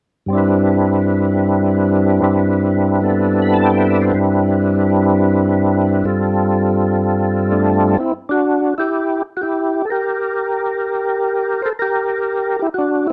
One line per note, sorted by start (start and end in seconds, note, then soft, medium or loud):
0.26 2.20 G2 medium
0.26 2.21 G3 soft
0.26 2.22 C4 soft
0.33 2.22 D4 soft
0.33 2.22 E4 soft
0.37 2.23 B4 medium
2.22 4.12 G2 soft
2.22 3.00 G3 soft
2.22 4.13 C4 soft
2.22 3.01 D4 soft
2.22 4.14 E4 soft
2.22 4.14 B4 medium
3.01 4.13 G3 soft
3.01 4.14 B3 soft
3.01 4.13 D4 soft
3.01 4.15 A4 soft
3.42 3.57 B5 soft
3.54 3.71 A5 soft
3.65 3.88 G5 soft
3.78 3.98 E5 medium
3.90 4.05 D5 medium
4.02 4.18 C5 medium
4.13 6.03 G2 medium
4.13 6.04 G3 medium
4.13 6.04 C4 medium
4.13 6.06 D4 soft
4.13 6.06 E4 medium
4.13 6.06 B4 medium
6.04 7.97 G2 soft
6.04 7.97 G3 soft
6.04 7.97 C4 soft
6.04 7.97 F4 soft
6.04 7.97 A4 soft
7.51 7.95 A3 soft
7.51 7.95 D4 medium
7.98 8.12 C4 medium
7.98 8.14 E4 medium
8.29 8.74 D4 medium
8.29 8.75 F#4 medium
8.78 9.22 E4 medium
8.78 9.23 G4 medium
9.37 9.41 F#4 medium
9.41 9.82 E4 medium
9.41 9.86 G4 medium
9.85 9.89 A4 medium
9.90 11.61 G4 medium
9.90 11.70 A#4 medium
11.62 11.73 A4 medium
11.62 11.70 C5 medium
11.79 12.57 G4 medium
11.79 12.62 A#4 loud
12.59 12.69 E4 medium
12.59 12.67 G4 medium
12.74 13.08 F#4 medium
12.78 13.07 D4 medium
13.07 13.13 E4 medium